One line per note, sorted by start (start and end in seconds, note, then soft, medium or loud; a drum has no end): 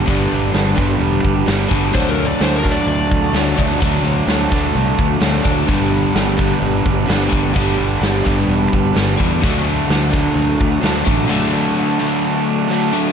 0.08 0.27 G1 medium
0.08 0.31 G2 medium
0.08 0.31 D3 medium
0.08 0.30 G3 medium
0.08 0.31 B3 medium
0.08 0.32 D4 medium
0.08 0.32 G4 medium
0.08 kick medium
0.08 open hi-hat soft
0.27 0.53 G3 medium
0.27 0.53 D4 medium
0.32 0.51 G1 medium
0.32 0.53 B3 medium
0.32 0.53 D4 medium
0.32 0.54 G4 medium
0.53 0.73 G1 medium
0.53 0.77 G2 medium
0.53 0.77 D3 medium
0.53 0.76 G3 medium
0.53 0.77 B3 medium
0.53 0.78 D4 medium
0.53 0.78 G4 medium
0.53 snare medium
0.53 open hi-hat soft
0.75 0.97 G1 medium
0.75 1.44 G2 medium
0.75 1.46 D3 medium
0.75 0.89 G3 medium
0.75 0.89 B3 medium
0.75 1.21 D4 medium
0.75 kick medium
0.79 0.89 D4 medium
0.79 0.87 G4 medium
0.89 1.11 G3 soft
0.89 1.11 B3 soft
0.89 1.10 D4 medium
0.89 1.10 G4 medium
1.00 1.19 E1 medium
1.00 open hi-hat soft
1.11 1.36 G3 soft
1.11 1.35 B3 soft
1.11 1.34 D4 medium
1.11 1.34 G4 medium
1.22 1.43 G1 medium
1.22 1.45 G3 medium
1.22 1.46 B3 medium
1.22 1.47 D4 medium
1.22 kick medium
1.35 1.46 G3 soft
1.35 1.46 B3 soft
1.35 1.46 D4 medium
1.35 1.46 G4 medium
1.46 1.67 G1 medium
1.46 1.70 G2 medium
1.46 1.71 D3 medium
1.46 1.69 G3 medium
1.46 1.70 B3 medium
1.46 1.71 D4 medium
1.46 1.71 G4 medium
1.46 snare loud
1.46 open hi-hat soft
1.70 1.90 G1 medium
1.70 1.94 G2 medium
1.70 1.92 D3 medium
1.70 1.82 G3 medium
1.70 1.82 B3 medium
1.70 1.82 D4 medium
1.70 1.81 G4 medium
1.70 kick medium
1.82 1.93 G3 soft
1.82 1.94 B3 soft
1.82 1.93 D4 soft
1.82 1.94 G4 medium
1.93 2.32 D2 medium
1.93 2.17 D3 medium
1.93 2.15 F#3 medium
1.93 2.16 A3 medium
1.93 2.17 D4 medium
1.93 2.18 F#4 medium
1.93 2.10 C5 medium
1.93 kick loud
1.93 open hi-hat soft
2.10 2.25 A#4 medium
2.16 2.40 F#3 medium
2.16 2.41 A3 medium
2.16 2.41 D4 medium
2.16 2.41 F#4 medium
2.25 2.40 D5 medium
2.40 2.78 D2 medium
2.40 2.64 D3 medium
2.40 2.62 F#3 medium
2.40 2.64 A3 medium
2.40 2.65 D4 medium
2.40 2.65 F#4 medium
2.40 2.57 C5 medium
2.40 snare loud
2.40 open hi-hat soft
2.56 2.71 A#4 medium
2.62 3.32 D3 medium
2.62 2.76 F#3 medium
2.62 2.76 A3 medium
2.62 3.10 D4 medium
2.62 kick medium
2.66 2.76 D4 medium
2.66 2.74 F#4 medium
2.72 2.98 F#4 medium
2.72 2.87 D5 medium
2.77 3.00 A3 soft
2.77 3.00 D4 soft
2.87 3.06 D2 medium
2.87 3.79 D5 medium
2.87 open hi-hat soft
2.99 3.23 A3 soft
2.99 3.21 D4 medium
2.99 3.20 F#4 medium
3.11 3.30 D2 medium
3.11 3.33 F#3 soft
3.11 3.34 A3 medium
3.11 3.36 D4 medium
3.11 kick medium
3.21 3.34 A3 soft
3.21 3.33 D4 soft
3.21 3.34 F#4 medium
3.33 3.53 D2 medium
3.33 3.57 D3 medium
3.33 3.56 F#3 medium
3.33 3.56 A3 medium
3.33 3.57 D4 medium
3.33 3.58 F#4 medium
3.33 snare loud
3.33 open hi-hat soft
3.47 snare soft
3.57 3.77 D2 medium
3.57 3.79 D3 medium
3.57 3.69 F#3 medium
3.57 3.69 A3 medium
3.57 3.68 D4 medium
3.57 3.66 F#4 medium
3.57 kick medium
3.67 3.79 A3 soft
3.67 3.79 D4 medium
3.67 3.79 F#4 medium
3.78 4.00 D2 medium
3.78 4.03 D3 medium
3.78 4.02 F#3 medium
3.78 4.03 A3 medium
3.78 4.04 D4 medium
3.78 4.04 F#4 medium
3.78 kick medium
3.78 open hi-hat soft
4.03 4.23 D2 medium
4.03 4.26 F#3 medium
4.03 4.26 A3 medium
4.03 4.27 D4 medium
4.03 4.27 F#4 medium
4.26 4.46 D2 medium
4.26 4.51 D3 medium
4.26 4.48 F#3 medium
4.26 4.49 A3 medium
4.26 4.50 D4 medium
4.26 4.51 F#4 medium
4.26 snare medium
4.26 open hi-hat soft
4.49 4.70 D2 medium
4.49 4.62 F#3 medium
4.49 4.62 A3 medium
4.49 4.97 D4 medium
4.49 4.60 F#4 medium
4.49 kick medium
4.53 5.20 D3 medium
4.53 4.99 F#3 soft
4.61 4.85 A3 soft
4.61 4.85 D4 medium
4.61 4.83 F#4 medium
4.75 4.94 C2 medium
4.75 open hi-hat soft
4.85 5.09 A3 soft
4.85 5.07 D4 soft
4.85 5.06 F#4 medium
4.98 5.17 D2 medium
4.98 5.20 F#3 medium
4.98 5.21 A3 medium
4.98 5.23 D4 medium
4.98 kick medium
5.07 5.20 A3 soft
5.07 5.20 D4 soft
5.07 5.20 F#4 medium
5.20 5.40 D2 medium
5.20 5.44 D3 medium
5.20 5.42 F#3 medium
5.20 5.43 A3 medium
5.20 5.44 D4 medium
5.20 5.45 F#4 medium
5.20 snare loud
5.20 open hi-hat soft
5.43 5.64 D2 medium
5.43 5.56 F#3 medium
5.43 5.57 A3 medium
5.43 5.56 D4 medium
5.43 5.55 F#4 medium
5.43 kick medium
5.48 5.66 D3 medium
5.56 5.67 A3 soft
5.56 5.67 D4 soft
5.56 5.68 F#4 soft
5.67 6.06 G1 medium
5.67 5.91 G2 medium
5.67 5.91 D3 medium
5.67 5.90 G3 medium
5.67 5.91 B3 medium
5.67 5.91 D4 medium
5.67 5.92 G4 medium
5.67 kick loud
5.67 open hi-hat soft
5.91 6.13 G3 medium
5.91 6.12 B3 medium
5.91 6.13 D4 medium
5.91 6.13 G4 medium
6.13 6.53 G1 medium
6.13 6.38 G2 medium
6.13 6.37 D3 medium
6.13 6.34 G3 medium
6.13 6.35 B3 medium
6.13 6.35 D4 medium
6.13 6.37 G4 medium
6.13 snare medium
6.13 open hi-hat soft
6.35 7.06 D3 medium
6.35 6.48 G3 medium
6.35 6.47 B3 medium
6.35 6.47 D4 medium
6.35 6.46 G4 medium
6.39 7.06 G2 medium
6.39 6.86 G3 soft
6.39 kick medium
6.47 6.72 G3 soft
6.47 6.71 B3 soft
6.47 6.71 D4 soft
6.47 6.70 G4 soft
6.62 6.81 G1 medium
6.62 open hi-hat soft
6.71 6.94 G3 soft
6.71 6.93 B3 soft
6.71 6.93 D4 medium
6.71 6.92 G4 medium
6.84 7.05 G1 medium
6.84 7.07 G3 soft
6.84 7.07 B3 medium
6.84 7.09 D4 medium
6.84 kick medium
6.93 7.04 G3 soft
6.93 7.05 B3 soft
6.93 7.04 D4 soft
6.93 7.05 G4 medium
7.05 7.30 G2 medium
7.05 7.30 D3 medium
7.05 7.26 G3 medium
7.05 7.27 B3 medium
7.05 7.29 D4 medium
7.05 7.29 G4 medium
7.09 7.28 G1 medium
7.09 snare loud
7.09 open hi-hat soft
7.28 7.54 D3 medium
7.28 7.42 G3 medium
7.28 7.41 B3 medium
7.28 7.40 D4 medium
7.28 7.39 G4 medium
7.32 7.51 G1 medium
7.32 7.52 G2 medium
7.32 kick medium
7.40 7.51 G3 soft
7.40 7.52 B3 soft
7.40 7.52 D4 soft
7.40 7.52 G4 medium
7.52 7.77 G2 medium
7.52 7.77 D3 medium
7.52 7.74 G3 medium
7.52 7.76 B3 medium
7.52 7.77 D4 medium
7.52 7.77 G4 medium
7.56 7.75 G1 medium
7.56 9.16 G3 medium
7.56 kick medium
7.56 open hi-hat soft
7.76 7.98 G1 medium
7.76 8.00 G3 medium
7.76 7.99 B3 medium
7.76 8.00 D4 medium
7.76 8.00 G4 medium
8.00 8.21 G1 medium
8.00 8.25 G2 medium
8.00 8.25 D3 medium
8.00 8.22 G3 medium
8.00 8.23 B3 medium
8.00 8.24 D4 medium
8.00 8.25 G4 medium
8.00 snare loud
8.00 open hi-hat soft
8.24 8.45 G1 medium
8.24 8.93 G2 medium
8.24 8.95 D3 medium
8.24 8.36 G3 medium
8.24 8.37 B3 medium
8.24 8.71 D4 medium
8.24 8.35 G4 medium
8.24 kick medium
8.36 8.60 G3 soft
8.36 8.59 B3 soft
8.36 8.59 D4 soft
8.36 8.58 G4 medium
8.48 8.67 E1 medium
8.48 open hi-hat soft
8.59 8.84 G3 soft
8.59 8.83 B3 soft
8.59 8.82 D4 medium
8.59 8.81 G4 medium
8.71 8.91 G1 medium
8.71 8.95 G3 soft
8.71 8.95 B3 medium
8.71 8.97 D4 medium
8.71 kick medium
8.82 8.92 G3 soft
8.82 8.93 B3 soft
8.82 8.93 D4 soft
8.82 8.94 G4 medium
8.93 9.15 G1 medium
8.93 9.18 G2 medium
8.93 9.18 D3 medium
8.93 9.15 G3 medium
8.93 9.17 B3 medium
8.93 9.17 D4 medium
8.93 9.18 G4 medium
8.93 snare loud
8.93 open hi-hat soft
9.17 9.44 E2 medium
9.17 9.40 D3 medium
9.17 9.30 G3 medium
9.17 9.29 B3 medium
9.17 9.29 D4 medium
9.17 9.27 G4 medium
9.17 kick medium
9.22 9.43 G2 medium
9.29 9.41 G3 soft
9.29 9.42 B3 soft
9.29 9.41 D4 medium
9.29 9.42 G4 medium
9.41 9.81 D2 medium
9.41 9.62 D3 medium
9.41 9.66 F#3 medium
9.41 9.64 A3 medium
9.41 9.65 D4 medium
9.41 9.65 F#4 medium
9.41 kick medium
9.41 open hi-hat soft
9.64 9.86 D3 medium
9.64 9.88 F#3 medium
9.64 9.87 A3 medium
9.64 9.87 D4 medium
9.64 9.88 F#4 medium
9.87 10.27 D2 medium
9.87 10.10 D3 medium
9.87 10.13 F#3 medium
9.87 10.11 A3 medium
9.87 10.12 D4 medium
9.87 10.13 F#4 medium
9.87 snare loud
9.87 open hi-hat soft
10.12 10.24 D3 medium
10.12 10.60 F#3 medium
10.12 10.24 A3 medium
10.12 10.24 D4 medium
10.12 10.23 F#4 medium
10.12 kick medium
10.24 10.48 A3 soft
10.24 10.48 D4 soft
10.24 10.46 F#4 medium
10.36 10.55 D2 medium
10.36 open hi-hat soft
10.47 10.70 A3 soft
10.47 10.70 D4 medium
10.47 10.68 F#4 medium
10.59 10.79 D2 medium
10.59 10.82 F#3 soft
10.59 10.82 A3 medium
10.59 10.84 D4 medium
10.59 kick medium
10.70 10.81 A3 soft
10.70 10.81 D4 soft
10.70 10.82 F#4 soft
10.81 11.01 D2 medium
10.81 11.03 D3 medium
10.81 11.27 F#3 medium
10.81 11.04 A3 medium
10.81 11.05 D4 medium
10.81 11.06 F#4 medium
10.81 snare medium
10.81 open hi-hat soft
10.96 snare soft
11.04 11.25 A1 medium
11.04 11.17 D3 medium
11.04 11.18 A3 medium
11.04 11.16 D4 medium
11.04 11.15 F#4 medium
11.04 kick medium
11.09 11.26 D3 medium
11.16 11.28 A3 soft
11.16 11.28 D4 soft
11.16 11.29 F#4 medium
11.28 11.51 D3 medium
11.28 11.52 F#3 medium
11.28 11.52 A3 medium
11.28 11.53 D4 medium
11.28 11.53 F#4 medium
11.53 11.75 D3 medium
11.53 11.74 F#3 medium
11.53 11.76 A3 medium
11.53 11.77 D4 medium
11.53 11.78 F#4 medium
11.75 11.99 D3 medium
11.75 12.01 F#3 medium
11.75 12.00 A3 medium
11.75 12.01 D4 medium
11.75 12.01 F#4 medium
12.00 12.12 D3 medium
12.00 12.46 F#3 medium
12.00 12.12 A3 medium
12.00 12.12 D4 medium
12.00 12.11 F#4 medium
12.12 12.36 A3 soft
12.12 12.35 D4 soft
12.12 12.34 F#4 medium
12.35 12.60 A3 soft
12.35 12.58 D4 soft
12.35 12.57 F#4 medium
12.45 12.69 F#3 soft
12.45 12.69 A3 medium
12.45 12.70 D4 medium
12.58 12.69 A3 soft
12.58 12.69 D4 soft
12.58 12.70 F#4 medium
12.69 12.93 D3 medium
12.69 13.12 F#3 medium
12.69 12.94 A3 medium
12.69 12.94 D4 medium
12.69 12.94 F#4 medium
12.94 13.06 D3 medium
12.94 13.06 A3 medium
12.94 13.05 D4 medium
12.94 13.03 F#4 medium
13.05 13.12 A3 soft
13.05 13.12 D4 soft
13.05 13.12 F#4 medium